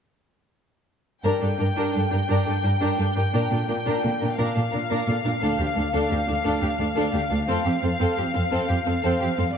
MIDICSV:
0, 0, Header, 1, 5, 480
1, 0, Start_track
1, 0, Key_signature, -2, "minor"
1, 0, Tempo, 348028
1, 1717, Time_signature, 12, 3, 24, 8
1, 7471, Tempo, 344234
1, 13273, End_track
2, 0, Start_track
2, 0, Title_t, "Violin section"
2, 0, Program_c, 0, 48
2, 1719, Note_on_c, 0, 79, 37
2, 5982, Note_off_c, 0, 79, 0
2, 6032, Note_on_c, 0, 77, 40
2, 10350, Note_off_c, 0, 77, 0
2, 10371, Note_on_c, 0, 77, 42
2, 13183, Note_off_c, 0, 77, 0
2, 13273, End_track
3, 0, Start_track
3, 0, Title_t, "Violin section"
3, 0, Program_c, 1, 48
3, 1709, Note_on_c, 1, 70, 44
3, 1937, Note_off_c, 1, 70, 0
3, 1959, Note_on_c, 1, 69, 26
3, 2055, Note_off_c, 1, 69, 0
3, 2201, Note_on_c, 1, 70, 27
3, 2296, Note_off_c, 1, 70, 0
3, 2441, Note_on_c, 1, 70, 42
3, 2664, Note_off_c, 1, 70, 0
3, 2687, Note_on_c, 1, 69, 30
3, 2782, Note_off_c, 1, 69, 0
3, 2922, Note_on_c, 1, 70, 28
3, 3018, Note_off_c, 1, 70, 0
3, 3160, Note_on_c, 1, 70, 44
3, 3383, Note_off_c, 1, 70, 0
3, 3394, Note_on_c, 1, 69, 30
3, 3491, Note_off_c, 1, 69, 0
3, 3643, Note_on_c, 1, 70, 32
3, 3738, Note_off_c, 1, 70, 0
3, 3866, Note_on_c, 1, 70, 41
3, 4096, Note_off_c, 1, 70, 0
3, 4111, Note_on_c, 1, 69, 31
3, 4208, Note_off_c, 1, 69, 0
3, 4353, Note_on_c, 1, 70, 30
3, 4450, Note_off_c, 1, 70, 0
3, 4601, Note_on_c, 1, 70, 41
3, 4822, Note_off_c, 1, 70, 0
3, 4848, Note_on_c, 1, 69, 26
3, 4941, Note_off_c, 1, 69, 0
3, 5081, Note_on_c, 1, 70, 28
3, 5176, Note_off_c, 1, 70, 0
3, 5312, Note_on_c, 1, 70, 47
3, 5537, Note_off_c, 1, 70, 0
3, 5554, Note_on_c, 1, 69, 25
3, 5651, Note_off_c, 1, 69, 0
3, 5795, Note_on_c, 1, 70, 30
3, 5892, Note_off_c, 1, 70, 0
3, 6032, Note_on_c, 1, 70, 47
3, 6256, Note_off_c, 1, 70, 0
3, 6266, Note_on_c, 1, 69, 25
3, 6363, Note_off_c, 1, 69, 0
3, 6495, Note_on_c, 1, 70, 30
3, 6594, Note_off_c, 1, 70, 0
3, 6746, Note_on_c, 1, 70, 45
3, 6971, Note_off_c, 1, 70, 0
3, 6996, Note_on_c, 1, 69, 31
3, 7091, Note_off_c, 1, 69, 0
3, 7231, Note_on_c, 1, 70, 30
3, 7327, Note_off_c, 1, 70, 0
3, 7465, Note_on_c, 1, 69, 39
3, 7692, Note_off_c, 1, 69, 0
3, 7698, Note_on_c, 1, 67, 32
3, 7797, Note_off_c, 1, 67, 0
3, 7943, Note_on_c, 1, 69, 29
3, 8040, Note_off_c, 1, 69, 0
3, 8178, Note_on_c, 1, 69, 43
3, 8407, Note_off_c, 1, 69, 0
3, 8425, Note_on_c, 1, 67, 27
3, 8522, Note_off_c, 1, 67, 0
3, 8668, Note_on_c, 1, 69, 33
3, 8764, Note_off_c, 1, 69, 0
3, 8897, Note_on_c, 1, 69, 45
3, 9127, Note_off_c, 1, 69, 0
3, 9146, Note_on_c, 1, 67, 27
3, 9244, Note_off_c, 1, 67, 0
3, 9381, Note_on_c, 1, 69, 30
3, 9480, Note_off_c, 1, 69, 0
3, 9610, Note_on_c, 1, 69, 42
3, 9843, Note_off_c, 1, 69, 0
3, 9858, Note_on_c, 1, 67, 33
3, 9957, Note_off_c, 1, 67, 0
3, 10099, Note_on_c, 1, 69, 33
3, 10198, Note_off_c, 1, 69, 0
3, 10344, Note_on_c, 1, 69, 46
3, 10572, Note_off_c, 1, 69, 0
3, 10582, Note_on_c, 1, 67, 30
3, 10680, Note_off_c, 1, 67, 0
3, 10829, Note_on_c, 1, 69, 30
3, 10925, Note_off_c, 1, 69, 0
3, 11063, Note_on_c, 1, 69, 49
3, 11289, Note_off_c, 1, 69, 0
3, 11314, Note_on_c, 1, 67, 32
3, 11409, Note_off_c, 1, 67, 0
3, 11546, Note_on_c, 1, 69, 31
3, 11642, Note_off_c, 1, 69, 0
3, 11778, Note_on_c, 1, 69, 47
3, 12005, Note_off_c, 1, 69, 0
3, 12029, Note_on_c, 1, 67, 29
3, 12125, Note_off_c, 1, 67, 0
3, 12260, Note_on_c, 1, 69, 34
3, 12358, Note_off_c, 1, 69, 0
3, 12498, Note_on_c, 1, 69, 52
3, 12727, Note_off_c, 1, 69, 0
3, 12756, Note_on_c, 1, 67, 34
3, 12851, Note_off_c, 1, 67, 0
3, 12989, Note_on_c, 1, 69, 36
3, 13085, Note_off_c, 1, 69, 0
3, 13216, Note_on_c, 1, 67, 47
3, 13273, Note_off_c, 1, 67, 0
3, 13273, End_track
4, 0, Start_track
4, 0, Title_t, "Viola section"
4, 0, Program_c, 2, 48
4, 1721, Note_on_c, 2, 62, 31
4, 1926, Note_off_c, 2, 62, 0
4, 1942, Note_on_c, 2, 62, 29
4, 2041, Note_off_c, 2, 62, 0
4, 2184, Note_on_c, 2, 62, 25
4, 2283, Note_off_c, 2, 62, 0
4, 2418, Note_on_c, 2, 62, 37
4, 2638, Note_off_c, 2, 62, 0
4, 2655, Note_on_c, 2, 62, 24
4, 2756, Note_off_c, 2, 62, 0
4, 2903, Note_on_c, 2, 62, 28
4, 3002, Note_off_c, 2, 62, 0
4, 3149, Note_on_c, 2, 62, 39
4, 3377, Note_off_c, 2, 62, 0
4, 3402, Note_on_c, 2, 62, 30
4, 3497, Note_off_c, 2, 62, 0
4, 3632, Note_on_c, 2, 62, 34
4, 3729, Note_off_c, 2, 62, 0
4, 3876, Note_on_c, 2, 62, 41
4, 4101, Note_off_c, 2, 62, 0
4, 4118, Note_on_c, 2, 62, 30
4, 4214, Note_off_c, 2, 62, 0
4, 4355, Note_on_c, 2, 62, 32
4, 4452, Note_off_c, 2, 62, 0
4, 4593, Note_on_c, 2, 62, 37
4, 4814, Note_off_c, 2, 62, 0
4, 4831, Note_on_c, 2, 62, 28
4, 4927, Note_off_c, 2, 62, 0
4, 5078, Note_on_c, 2, 62, 30
4, 5173, Note_off_c, 2, 62, 0
4, 5320, Note_on_c, 2, 62, 37
4, 5541, Note_off_c, 2, 62, 0
4, 5569, Note_on_c, 2, 62, 29
4, 5662, Note_off_c, 2, 62, 0
4, 5811, Note_on_c, 2, 62, 30
4, 5904, Note_off_c, 2, 62, 0
4, 6046, Note_on_c, 2, 62, 38
4, 6264, Note_off_c, 2, 62, 0
4, 6285, Note_on_c, 2, 62, 28
4, 6378, Note_off_c, 2, 62, 0
4, 6525, Note_on_c, 2, 62, 35
4, 6618, Note_off_c, 2, 62, 0
4, 6761, Note_on_c, 2, 62, 39
4, 6979, Note_off_c, 2, 62, 0
4, 7001, Note_on_c, 2, 62, 31
4, 7095, Note_off_c, 2, 62, 0
4, 7238, Note_on_c, 2, 62, 31
4, 7333, Note_off_c, 2, 62, 0
4, 7486, Note_on_c, 2, 62, 31
4, 7704, Note_off_c, 2, 62, 0
4, 7728, Note_on_c, 2, 62, 30
4, 7821, Note_off_c, 2, 62, 0
4, 7974, Note_on_c, 2, 62, 26
4, 8066, Note_off_c, 2, 62, 0
4, 8196, Note_on_c, 2, 62, 38
4, 8417, Note_off_c, 2, 62, 0
4, 8431, Note_on_c, 2, 62, 28
4, 8527, Note_off_c, 2, 62, 0
4, 8666, Note_on_c, 2, 62, 34
4, 8763, Note_off_c, 2, 62, 0
4, 8915, Note_on_c, 2, 62, 41
4, 9132, Note_off_c, 2, 62, 0
4, 9149, Note_on_c, 2, 62, 31
4, 9246, Note_off_c, 2, 62, 0
4, 9402, Note_on_c, 2, 62, 30
4, 9496, Note_off_c, 2, 62, 0
4, 9624, Note_on_c, 2, 62, 42
4, 9851, Note_off_c, 2, 62, 0
4, 9870, Note_on_c, 2, 62, 32
4, 9966, Note_off_c, 2, 62, 0
4, 10107, Note_on_c, 2, 62, 34
4, 10204, Note_off_c, 2, 62, 0
4, 10344, Note_on_c, 2, 60, 42
4, 10572, Note_off_c, 2, 60, 0
4, 10591, Note_on_c, 2, 60, 26
4, 10687, Note_off_c, 2, 60, 0
4, 10831, Note_on_c, 2, 60, 34
4, 10927, Note_off_c, 2, 60, 0
4, 11068, Note_on_c, 2, 60, 41
4, 11288, Note_off_c, 2, 60, 0
4, 11304, Note_on_c, 2, 60, 36
4, 11401, Note_off_c, 2, 60, 0
4, 11540, Note_on_c, 2, 60, 34
4, 11638, Note_off_c, 2, 60, 0
4, 11785, Note_on_c, 2, 60, 44
4, 12009, Note_off_c, 2, 60, 0
4, 12038, Note_on_c, 2, 60, 36
4, 12132, Note_off_c, 2, 60, 0
4, 12277, Note_on_c, 2, 60, 34
4, 12372, Note_off_c, 2, 60, 0
4, 12521, Note_on_c, 2, 60, 48
4, 12739, Note_off_c, 2, 60, 0
4, 12755, Note_on_c, 2, 60, 39
4, 12850, Note_off_c, 2, 60, 0
4, 12994, Note_on_c, 2, 60, 39
4, 13089, Note_off_c, 2, 60, 0
4, 13226, Note_on_c, 2, 58, 37
4, 13273, Note_off_c, 2, 58, 0
4, 13273, End_track
5, 0, Start_track
5, 0, Title_t, "Cello section"
5, 0, Program_c, 3, 48
5, 1717, Note_on_c, 3, 43, 43
5, 1814, Note_off_c, 3, 43, 0
5, 1959, Note_on_c, 3, 43, 32
5, 2055, Note_off_c, 3, 43, 0
5, 2199, Note_on_c, 3, 43, 31
5, 2295, Note_off_c, 3, 43, 0
5, 2440, Note_on_c, 3, 43, 40
5, 2536, Note_off_c, 3, 43, 0
5, 2690, Note_on_c, 3, 43, 29
5, 2784, Note_off_c, 3, 43, 0
5, 2922, Note_on_c, 3, 43, 33
5, 3017, Note_off_c, 3, 43, 0
5, 3167, Note_on_c, 3, 43, 40
5, 3261, Note_off_c, 3, 43, 0
5, 3400, Note_on_c, 3, 43, 30
5, 3495, Note_off_c, 3, 43, 0
5, 3639, Note_on_c, 3, 43, 30
5, 3735, Note_off_c, 3, 43, 0
5, 3872, Note_on_c, 3, 43, 38
5, 3969, Note_off_c, 3, 43, 0
5, 4117, Note_on_c, 3, 43, 28
5, 4213, Note_off_c, 3, 43, 0
5, 4358, Note_on_c, 3, 43, 31
5, 4454, Note_off_c, 3, 43, 0
5, 4612, Note_on_c, 3, 46, 43
5, 4705, Note_off_c, 3, 46, 0
5, 4841, Note_on_c, 3, 46, 29
5, 4935, Note_off_c, 3, 46, 0
5, 5085, Note_on_c, 3, 46, 30
5, 5179, Note_off_c, 3, 46, 0
5, 5323, Note_on_c, 3, 46, 42
5, 5418, Note_off_c, 3, 46, 0
5, 5574, Note_on_c, 3, 46, 29
5, 5666, Note_off_c, 3, 46, 0
5, 5816, Note_on_c, 3, 46, 31
5, 5908, Note_off_c, 3, 46, 0
5, 6047, Note_on_c, 3, 46, 36
5, 6140, Note_off_c, 3, 46, 0
5, 6287, Note_on_c, 3, 46, 27
5, 6380, Note_off_c, 3, 46, 0
5, 6533, Note_on_c, 3, 46, 31
5, 6624, Note_off_c, 3, 46, 0
5, 6764, Note_on_c, 3, 46, 37
5, 6857, Note_off_c, 3, 46, 0
5, 7002, Note_on_c, 3, 46, 29
5, 7096, Note_off_c, 3, 46, 0
5, 7231, Note_on_c, 3, 46, 30
5, 7327, Note_off_c, 3, 46, 0
5, 7465, Note_on_c, 3, 38, 44
5, 7563, Note_off_c, 3, 38, 0
5, 7717, Note_on_c, 3, 38, 30
5, 7812, Note_off_c, 3, 38, 0
5, 7953, Note_on_c, 3, 38, 31
5, 8049, Note_off_c, 3, 38, 0
5, 8191, Note_on_c, 3, 38, 44
5, 8287, Note_off_c, 3, 38, 0
5, 8435, Note_on_c, 3, 38, 30
5, 8530, Note_off_c, 3, 38, 0
5, 8680, Note_on_c, 3, 38, 31
5, 8774, Note_off_c, 3, 38, 0
5, 8911, Note_on_c, 3, 38, 38
5, 9007, Note_off_c, 3, 38, 0
5, 9143, Note_on_c, 3, 38, 29
5, 9241, Note_off_c, 3, 38, 0
5, 9384, Note_on_c, 3, 38, 34
5, 9482, Note_off_c, 3, 38, 0
5, 9623, Note_on_c, 3, 38, 45
5, 9721, Note_off_c, 3, 38, 0
5, 9867, Note_on_c, 3, 38, 33
5, 9963, Note_off_c, 3, 38, 0
5, 10100, Note_on_c, 3, 38, 34
5, 10198, Note_off_c, 3, 38, 0
5, 10337, Note_on_c, 3, 41, 47
5, 10437, Note_off_c, 3, 41, 0
5, 10592, Note_on_c, 3, 41, 34
5, 10688, Note_off_c, 3, 41, 0
5, 10837, Note_on_c, 3, 41, 37
5, 10932, Note_off_c, 3, 41, 0
5, 11070, Note_on_c, 3, 41, 44
5, 11166, Note_off_c, 3, 41, 0
5, 11327, Note_on_c, 3, 41, 35
5, 11420, Note_off_c, 3, 41, 0
5, 11559, Note_on_c, 3, 41, 34
5, 11652, Note_off_c, 3, 41, 0
5, 11795, Note_on_c, 3, 41, 43
5, 11889, Note_off_c, 3, 41, 0
5, 12038, Note_on_c, 3, 41, 35
5, 12132, Note_off_c, 3, 41, 0
5, 12278, Note_on_c, 3, 41, 39
5, 12372, Note_off_c, 3, 41, 0
5, 12523, Note_on_c, 3, 41, 50
5, 12617, Note_off_c, 3, 41, 0
5, 12765, Note_on_c, 3, 41, 33
5, 12858, Note_off_c, 3, 41, 0
5, 13001, Note_on_c, 3, 41, 33
5, 13094, Note_off_c, 3, 41, 0
5, 13227, Note_on_c, 3, 43, 42
5, 13273, Note_off_c, 3, 43, 0
5, 13273, End_track
0, 0, End_of_file